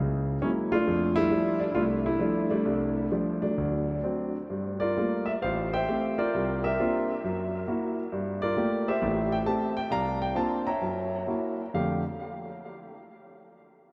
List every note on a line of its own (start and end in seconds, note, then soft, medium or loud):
0.00 0.37 C#2 medium
0.00 0.38 C#3 medium
0.42 0.74 F#3 soft
0.42 0.74 G#3 soft
0.42 0.74 A#3 soft
0.42 0.49 C#4 medium
0.42 0.75 E4 medium
0.72 0.86 A3 medium
0.72 1.29 D4 medium
0.72 1.13 F4 medium
0.87 1.26 F2 medium
0.87 1.16 A3 medium
1.16 1.29 G3 medium
1.16 1.30 A3 medium
1.16 1.58 E4 loud
1.30 1.62 F3 soft
1.30 1.62 G3 soft
1.30 1.63 A3 soft
1.30 1.58 D4 medium
1.59 1.71 D4 medium
1.72 1.76 E4 medium
1.72 1.81 F4 medium
1.76 2.15 C2 medium
1.76 2.06 A3 medium
1.76 2.19 D4 medium
2.06 2.18 G3 medium
2.06 2.19 A3 medium
2.06 2.52 E4 medium
2.19 2.51 F3 medium
2.19 2.50 G3 soft
2.19 2.50 A3 soft
2.19 2.49 D4 medium
2.50 3.10 G3 medium
2.50 3.10 A3 medium
2.50 3.10 D4 medium
2.65 3.05 C2 medium
3.11 3.43 F3 soft
3.11 3.43 G3 soft
3.11 3.41 A3 soft
3.11 3.41 D4 medium
3.42 4.02 F#3 soft
3.42 4.31 A3 soft
3.42 4.03 D4 medium
3.58 3.98 D2 medium
4.04 4.36 F#3 soft
4.04 4.36 C4 soft
4.04 4.36 D4 soft
4.50 4.90 G2 medium
4.80 4.96 F4 medium
4.80 5.38 A#4 medium
4.80 5.28 D5 medium
4.96 5.29 G3 soft
4.96 5.29 A3 soft
4.96 5.29 A#3 soft
4.96 5.29 F4 soft
5.26 5.31 E5 medium
5.42 5.82 A1 medium
5.42 5.72 C5 medium
5.42 5.73 F5 medium
5.73 6.30 C5 medium
5.73 6.30 E5 medium
5.73 6.20 G5 medium
5.89 6.20 A3 soft
5.89 6.20 C4 soft
5.89 6.20 G4 soft
6.18 6.78 F4 medium
6.18 6.62 A#4 medium
6.18 6.61 D5 medium
6.34 6.73 C2 medium
6.64 7.20 G4 medium
6.64 7.94 A#4 medium
6.64 7.94 E5 medium
6.79 7.11 A#3 soft
6.79 7.11 C4 soft
6.79 7.11 D4 soft
6.79 7.11 F4 medium
7.24 7.63 F#2 medium
7.67 7.99 A#3 soft
7.67 7.99 E4 soft
7.67 7.99 F#4 medium
8.12 8.51 G2 medium
8.42 8.55 F4 medium
8.42 8.98 A#4 medium
8.42 8.88 D5 medium
8.57 8.88 A3 soft
8.57 8.88 A#3 soft
8.57 8.88 F4 soft
8.57 8.87 G4 medium
8.88 9.45 G4 medium
8.88 9.72 C5 medium
8.88 9.33 E5 medium
9.02 9.40 A1 medium
9.02 9.40 A2 medium
9.32 9.37 G5 medium
9.46 9.77 A3 medium
9.46 9.77 C4 soft
9.46 9.77 G4 medium
9.46 9.73 A5 medium
9.77 9.90 G5 medium
9.90 10.29 C2 medium
9.90 10.77 D5 medium
9.90 10.77 F5 medium
9.90 10.22 A#5 medium
10.22 10.36 G5 medium
10.35 10.67 A#3 soft
10.35 10.67 C4 soft
10.35 10.67 D4 soft
10.35 10.67 F4 soft
10.35 10.67 A5 medium
10.67 11.55 C#5 medium
10.67 11.55 E5 medium
10.67 11.24 A#5 medium
10.81 11.21 F#2 soft
11.27 11.60 A#3 soft
11.27 11.60 E4 soft
11.27 11.60 F#4 soft
11.74 12.01 F2 medium
11.74 12.02 D3 soft
11.74 12.02 A3 soft
11.74 12.02 G4 medium
11.74 12.02 F5 medium